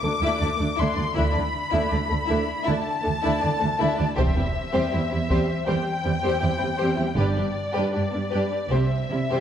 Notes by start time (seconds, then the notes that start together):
Already playing: D6
0.03 D2 A3 A4
0.07 A3 D4
0.21 D2 A3 D4 E4 E5
0.39 D2 A3 D4 D5
0.57 D2 A3 A4
0.61 D4
0.75 A3 D4 E4 E5 C6
0.80 D2
0.95 D2 A3 D4 D5
1.14 D2 A3 D4 E4 E5 B5
1.31 D4 D5
1.36 D2 A3
1.70 D2 A3 D4 E4 E5
1.88 A3 D4 D5
1.93 D2
2.07 D2 A3 D4 A4
2.26 A3 D4 E4 E5
2.30 D2
2.63 A3 D4 E4 E5 A5
2.68 D2
3.02 A3 D4 A4
3.07 D2
3.21 A3 D4 E4 E5
3.25 D2
3.41 D2 A3 D4 D5
3.59 D2 A3 D4 A4
3.78 D2 A3 D4 E4 E5
3.97 D2 A3 D4 D5
4.16 E1 E2 G3 C4 G4 C5 E5, taiko
4.36 E2 G3 C4 E4 G4
4.72 E2 G3 C4 G4 C5
4.92 E2 G3 C4 E4 G4
5.10 E2 G3 C4 E4
5.29 E2 G3 C4 G4 C5, taiko
5.66 E2 G3 C4 G4 C5 G5
6.04 E2 G3 C4 E4
6.23 E2 G3 C4 G4 C5
6.41 E2 G3 C4 E4 G4
6.57 C4 E4
6.62 E2 G3 C4
6.77 G4 C5
6.81 E2 G3 C4
6.96 E2 E4 G4
7.00 G3 C4
7.15 G1 G3 D4 G4 B4 D5
7.19 G2
7.36 G2 G3 D4 G4
7.73 G2 G3 D4 G4 B4
7.93 G2 G3 D4 G4 D5
8.11 G2 G3 B3 D4
8.30 G2 G3 D4 G4 B4
8.70 C2 C3 G3 C4 G4 C5 E5
9.10 C3 G3 C4 E4
9.30 C3 G3 C4 G4 C5